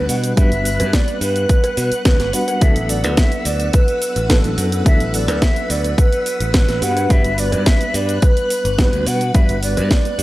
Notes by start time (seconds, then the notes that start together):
Already playing: G3 B3 D4 F#4 B4 F#6
0.09 B2 F#5, open hi-hat, cabasa
0.24 closed hi-hat, cabasa
0.36 G2 G3 B3 D4 F#4 B4 E5, kick, closed hi-hat, cabasa
0.52 G1, closed hi-hat, cabasa
0.65 open hi-hat, cabasa
0.80 G2, closed hi-hat, cowbell, cabasa
0.93 D5, kick, snare, closed hi-hat, cabasa
1.08 closed hi-hat, cabasa
1.21 G2 B4, open hi-hat, cabasa
1.36 closed hi-hat, cabasa
1.49 kick, closed hi-hat, cabasa
1.64 closed hi-hat, cowbell, cabasa
1.77 B2, open hi-hat, cabasa
1.92 muted picked electric bass stroke, closed hi-hat, cabasa
2.05 D2 B4, kick, snare, closed hi-hat, cabasa
2.20 G1, snare, closed hi-hat, cabasa
2.33 G3 B3 D4 F#4 B4 F#5, open hi-hat, cabasa
2.48 closed hi-hat, cowbell, cabasa
2.61 D2 F#3 B3 D4 E4 A4 B4 E5 E6, kick, closed hi-hat, cabasa
2.76 A1, closed hi-hat, cabasa
2.89 D5, open hi-hat, cabasa
3.04 D2, closed hi-hat, cowbell, cabasa
3.17 E5, kick, snare, closed hi-hat, cabasa
3.32 closed hi-hat, cabasa
3.45 D2 D5, open hi-hat, cabasa
3.60 closed hi-hat, cabasa
3.73 B4, kick, closed hi-hat, cabasa
3.88 closed hi-hat, cabasa
4.02 open hi-hat, cabasa
4.16 A1, closed hi-hat, cabasa
4.29 F#3 B3 D4 E4 A4 B4, kick, snare, closed hi-hat, cabasa
4.44 A1, closed hi-hat, cabasa
4.58 F#2, open hi-hat, cabasa
4.72 closed hi-hat, cabasa
4.85 D2 F#3 B3 D4 E4 A4 E5, kick, closed hi-hat, cabasa
5.00 A1, closed hi-hat, cabasa
5.08 E5
5.14 D5, open hi-hat, cabasa
5.28 D2, closed hi-hat, cowbell, cabasa
5.42 E5, kick, snare, closed hi-hat, cabasa
5.56 closed hi-hat, cabasa
5.70 D2 D5, open hi-hat, cabasa
5.84 closed hi-hat, cabasa
5.98 B4, kick, closed hi-hat, cabasa
6.13 closed hi-hat, cabasa
6.26 open hi-hat, cabasa
6.40 A1, closed hi-hat, cabasa
6.54 B4, kick, snare, closed hi-hat, cabasa
6.68 A1, snare, closed hi-hat, cabasa
6.82 G2 G3 B3 D4 F#4 B4 F#5 F#6, open hi-hat, cabasa
6.97 closed hi-hat, cowbell, cabasa
7.09 G2 G3 B3 D4 F#4 B4 E5, kick, closed hi-hat, cabasa
7.24 G1, closed hi-hat, cabasa
7.38 D5, open hi-hat, cabasa
7.52 G2, closed hi-hat, cowbell, cabasa
7.66 E5, kick, snare, closed hi-hat, cabasa
7.81 closed hi-hat, cabasa
7.94 G2 D5, open hi-hat, cabasa
8.09 closed hi-hat, cabasa
8.22 B4, kick, closed hi-hat, cabasa
8.37 closed hi-hat, cabasa
8.50 open hi-hat, cabasa
8.65 G1, closed hi-hat, cabasa
8.78 G3 B3 D4 F#4 B4, kick, snare, closed hi-hat, cabasa
8.93 D2, closed hi-hat, cabasa
9.06 B2 F#5, open hi-hat, cabasa
9.21 closed hi-hat, cabasa
9.34 G2 G3 B3 D4 F#4 B4 E5, kick, closed hi-hat, cabasa
9.49 G1, closed hi-hat, cabasa
9.63 D5, open hi-hat, cabasa
9.77 G2, closed hi-hat, cowbell, cabasa
9.91 D5, kick, snare, closed hi-hat, cabasa
10.05 closed hi-hat, cabasa
10.19 G2, open hi-hat, cabasa